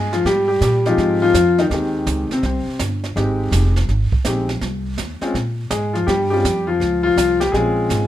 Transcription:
0.00 0.24 G2 medium
0.00 0.12 G#3 medium
0.00 0.13 G#4 medium
0.13 0.25 F3 medium
0.13 0.24 F4 medium
0.13 snare soft
0.25 0.60 G#2 medium
0.25 0.49 G3 medium
0.25 0.46 G4 medium
0.25 brush sweep soft
0.25 kick soft
0.25 snare soft
0.48 0.61 G3 medium
0.48 0.60 G4 medium
0.61 0.96 A#2 medium
0.61 0.85 G4 medium
0.61 kick soft
0.61 snare soft
0.61 hi-hat pedal medium
0.65 0.85 G3 medium
0.86 1.21 F3 medium
0.86 1.32 G#3 medium
0.86 1.32 C4 medium
0.86 1.32 D#4 medium
0.86 1.20 F4 medium
0.86 1.32 G4 medium
0.86 snare soft
0.97 1.33 G#2 medium
0.97 brush sweep soft
0.97 kick soft
0.97 snare soft
1.22 1.57 F3 medium
1.22 1.59 F4 loud
1.34 1.69 F2 medium
1.34 kick soft
1.34 snare medium
1.34 hi-hat pedal medium
1.58 1.66 D#3 medium
1.58 1.64 D#4 medium
1.58 snare soft
1.69 2.06 D#2 medium
1.69 2.26 G#3 soft
1.69 2.26 C4 soft
1.69 2.26 D#4 soft
1.69 2.26 G4 soft
1.69 brush sweep soft
1.69 kick soft
1.69 snare soft
1.74 2.29 D#3 medium
2.06 2.29 C#2 medium
2.06 kick soft
2.06 snare medium
2.06 hi-hat pedal soft
2.30 2.44 C3 medium
2.30 2.44 C4 medium
2.30 muted upright bass stroke soft
2.30 snare soft
2.43 2.65 C2 medium
2.43 2.79 C3 soft
2.43 2.78 C4 medium
2.43 brush sweep soft
2.43 kick soft
2.43 snare soft
2.66 muted upright bass stroke soft
2.79 3.15 G1 medium
2.79 kick soft
2.79 snare medium
2.79 hi-hat pedal medium
3.04 snare soft
3.16 3.51 G#1 medium
3.16 3.72 G#3 medium
3.16 3.72 C4 soft
3.16 3.72 D#4 medium
3.16 3.72 G4 medium
3.16 brush sweep medium
3.16 kick soft
3.16 snare soft
3.52 3.87 F1 medium
3.52 kick soft
3.52 snare medium
3.52 hi-hat pedal medium
3.76 snare soft
3.89 4.11 G#1 medium
3.89 brush sweep soft
3.89 kick soft
3.89 snare soft
4.12 muted upright bass stroke soft
4.12 kick soft
4.25 4.61 A#1 medium
4.25 4.47 G#3 soft
4.25 4.47 C4 medium
4.25 4.47 D#4 soft
4.25 4.47 G4 medium
4.25 kick soft
4.25 snare medium
4.25 hi-hat pedal soft
4.49 snare soft
4.61 4.96 C2 medium
4.61 brush sweep soft
4.61 kick soft
4.61 snare soft
4.97 5.20 D#2 medium
4.97 kick soft
4.97 snare medium
4.97 hi-hat pedal soft
5.21 5.33 G#3 medium
5.21 5.33 C4 medium
5.21 5.33 C#4 medium
5.21 5.34 F4 medium
5.21 muted upright bass stroke soft
5.21 snare soft
5.34 5.70 A#2 medium
5.34 brush sweep soft
5.34 kick soft
5.34 snare soft
5.70 6.06 G#2 medium
5.70 5.94 G#3 medium
5.70 5.93 G#4 medium
5.70 kick soft
5.70 snare medium
5.70 hi-hat pedal medium
5.93 6.07 F3 medium
5.93 6.06 F4 medium
5.93 snare soft
6.07 6.43 G2 medium
6.07 6.31 G3 medium
6.07 6.29 G4 medium
6.07 brush sweep soft
6.07 kick soft
6.07 snare soft
6.30 6.66 G3 medium
6.30 6.43 G#3 medium
6.30 6.43 C4 soft
6.30 6.44 C#4 soft
6.30 6.44 F4 medium
6.30 6.65 G4 medium
6.44 6.79 F2 medium
6.44 kick soft
6.44 snare medium
6.44 hi-hat pedal soft
6.67 7.02 F3 medium
6.67 7.01 F4 medium
6.80 7.16 C#2 medium
6.80 brush sweep soft
6.80 kick soft
6.80 snare soft
7.03 7.39 F3 medium
7.03 7.38 F4 loud
7.16 7.52 C2 medium
7.16 kick soft
7.16 snare medium
7.16 hi-hat pedal medium
7.40 7.54 G3 medium
7.40 7.54 G4 medium
7.40 snare medium
7.52 7.89 A#1 medium
7.52 8.07 G#3 medium
7.52 8.07 C4 soft
7.52 8.07 C#4 soft
7.52 8.07 F4 medium
7.52 8.07 G#4 medium
7.52 brush sweep soft
7.52 kick soft
7.52 snare soft
7.89 8.07 G#1 medium
7.89 kick soft
7.89 snare medium
7.89 hi-hat pedal soft

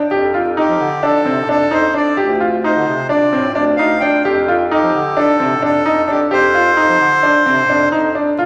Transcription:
0.11 0.65 F2 medium
0.11 2.16 F3 medium
0.11 2.16 D#4 medium
0.11 0.24 G4 medium
0.11 2.16 G4 medium
0.11 2.17 A4 medium
0.34 0.48 F4 medium
0.57 0.84 D#4 medium
0.57 1.06 G4 medium
0.69 0.79 F3 medium
0.80 1.01 D3 medium
1.03 1.16 D4 medium
1.03 1.49 A4 medium
1.25 1.51 C3 medium
1.25 1.39 C4 medium
1.49 1.70 F2 medium
1.49 1.62 D4 medium
1.49 1.73 A4 medium
1.71 1.93 F2 medium
1.71 1.85 D#4 medium
1.71 1.94 C5 medium
1.94 2.08 D4 medium
1.94 2.17 D5 medium
2.17 2.72 D2 medium
2.17 4.23 C3 medium
2.17 4.23 C4 medium
2.17 4.23 F4 medium
2.17 2.31 G4 medium
2.40 2.54 F4 medium
2.64 2.91 D#4 medium
2.64 3.07 C5 medium
2.76 2.87 D3 medium
2.88 3.09 C3 medium
3.09 3.23 D4 medium
3.09 3.52 D5 medium
3.33 3.59 A2 medium
3.33 3.46 C4 medium
3.54 3.78 D2 medium
3.54 3.69 D4 medium
3.54 3.65 D5 medium
3.77 4.00 D2 medium
3.77 3.93 D#4 medium
3.77 4.02 F5 medium
4.00 4.15 D4 medium
4.00 4.23 G5 medium
4.24 4.79 F2 medium
4.24 8.21 F3 medium
4.24 6.29 D#4 medium
4.24 6.29 G4 medium
4.24 4.38 G4 medium
4.24 8.21 A4 medium
4.48 4.62 F4 medium
4.71 4.98 D#4 medium
4.71 5.20 G4 medium
4.82 4.93 F3 medium
4.94 5.15 D3 medium
5.17 5.30 D4 medium
5.17 5.63 A4 medium
5.39 5.64 C3 medium
5.39 5.53 C4 medium
5.62 5.84 F2 medium
5.62 5.76 D4 medium
5.62 6.11 A4 medium
5.86 6.07 F2 medium
5.86 5.99 D#4 medium
6.08 6.21 D4 medium
6.08 6.20 G4 medium
6.31 6.85 F2 medium
6.31 8.21 D#4 medium
6.31 6.44 G4 medium
6.31 7.89 C5 loud
6.54 6.68 F4 medium
6.77 7.04 D#4 medium
6.89 7.00 F3 medium
7.00 7.21 D3 medium
7.23 7.36 D4 medium
7.46 7.71 C3 medium
7.46 7.60 C4 medium
7.69 7.90 F2 medium
7.69 7.83 D4 medium
7.92 8.14 F2 medium
7.92 8.05 D#4 medium
8.15 8.28 D4 medium
8.38 8.46 A#2 loud
8.38 8.46 A#2 medium
8.38 8.46 D3 medium
8.38 8.46 A3 medium
8.38 8.46 F4 medium

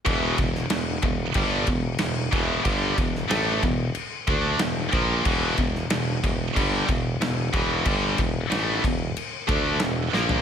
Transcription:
0.05 0.36 E1 loud
0.05 0.37 E2 medium
0.05 0.37 B2 medium
0.05 0.37 E3 loud
0.05 kick loud
0.05 crash medium
0.38 0.68 E1 medium
0.38 0.64 E2 medium
0.38 0.65 B2 medium
0.38 kick medium
0.38 crash medium
0.55 snare soft
0.70 1.01 E1 medium
0.70 0.96 E2 medium
0.70 0.97 B2 medium
0.70 snare loud
0.70 crash medium
1.02 1.33 E1 medium
1.02 1.29 E2 medium
1.02 1.29 B2 medium
1.02 kick loud
1.02 crash medium
1.34 1.65 G1 medium
1.34 1.66 G2 medium
1.34 1.66 D3 loud
1.34 1.67 G3 medium
1.34 kick loud
1.34 crash medium
1.67 1.98 E1 medium
1.67 1.93 E2 medium
1.67 1.93 B2 medium
1.67 kick loud
1.67 crash medium
1.98 2.31 E1 medium
1.98 2.26 E2 medium
1.98 2.26 B2 medium
1.98 snare loud
1.98 crash medium
2.31 2.63 E1 medium
2.31 2.63 E2 medium
2.31 2.63 B2 medium
2.31 2.64 E3 loud
2.31 kick loud
2.31 crash medium
2.63 2.95 G1 loud
2.63 2.95 G2 medium
2.63 2.95 D3 loud
2.63 2.96 G3 loud
2.63 kick loud
2.63 crash medium
2.95 3.28 E1 medium
2.95 3.23 E2 medium
2.95 3.23 B2 medium
2.95 kick loud
2.95 crash medium
3.15 snare soft
3.28 3.60 A1 medium
3.28 3.61 A2 medium
3.28 3.61 E3 loud
3.28 3.61 A3 loud
3.28 snare loud
3.28 crash medium
3.61 3.93 E1 medium
3.61 3.88 E2 medium
3.61 3.88 B2 medium
3.61 kick medium
3.61 crash medium
3.95 crash medium
4.27 4.58 D2 medium
4.27 4.60 D3 medium
4.27 4.60 A3 loud
4.27 4.60 D4 loud
4.27 kick loud
4.27 crash medium
4.59 4.90 E1 medium
4.59 4.87 E2 medium
4.59 4.87 B2 medium
4.59 snare loud
4.59 crash medium
4.92 5.23 A#1 loud
4.92 5.24 A#2 medium
4.92 5.25 F3 medium
4.92 5.25 A#3 loud
4.92 kick loud
4.92 crash medium
5.24 5.56 E1 loud
5.24 5.57 E2 medium
5.24 5.57 B2 loud
5.24 5.58 E3 loud
5.24 kick loud
5.24 crash medium
5.57 5.88 E1 medium
5.57 5.84 E2 medium
5.57 5.84 B2 medium
5.57 kick medium
5.57 crash medium
5.75 snare soft
5.89 6.21 E1 medium
5.89 6.17 E2 medium
5.89 6.17 B2 medium
5.89 snare loud
5.89 crash medium
6.23 6.54 E1 medium
6.23 6.50 E2 medium
6.23 6.50 B2 medium
6.23 kick medium
6.23 crash medium
6.56 6.86 G1 medium
6.56 6.88 G2 medium
6.56 6.88 D3 loud
6.56 6.89 G3 medium
6.56 kick loud
6.56 crash medium
6.88 7.19 E1 medium
6.88 7.15 E2 medium
6.88 7.15 B2 medium
6.88 kick loud
6.88 crash medium
7.20 7.51 E1 medium
7.20 7.47 E2 medium
7.20 7.48 B2 medium
7.20 snare loud
7.20 crash medium
7.53 7.84 E1 medium
7.53 7.85 E2 medium
7.53 7.86 B2 loud
7.53 7.86 E3 loud
7.53 kick loud
7.53 crash medium
7.85 8.16 G1 medium
7.85 8.18 G2 medium
7.85 8.18 D3 loud
7.85 8.19 G3 loud
7.85 kick loud
7.85 crash medium
8.18 8.49 E1 medium
8.18 8.45 E2 medium
8.18 8.45 B2 medium
8.18 kick medium
8.18 crash medium
8.49 8.81 A1 medium
8.49 8.83 A2 loud
8.49 8.83 E3 loud
8.49 8.83 A3 medium
8.49 snare loud
8.49 crash medium
8.84 9.14 E1 medium
8.84 9.10 E2 medium
8.84 9.10 B2 medium
8.84 kick loud
8.84 crash medium
9.17 crash medium
9.48 9.79 D2 medium
9.48 9.80 D3 loud
9.48 9.81 A3 loud
9.48 9.81 D4 medium
9.48 kick loud
9.48 crash medium
9.80 10.11 E1 medium
9.80 10.08 E2 medium
9.80 10.08 B2 medium
9.80 snare loud
9.80 crash medium
10.13 10.42 A#1 medium
10.13 10.42 A#2 medium
10.13 10.42 F3 medium
10.13 10.42 A#3 loud
10.13 snare medium
10.29 floor tom medium

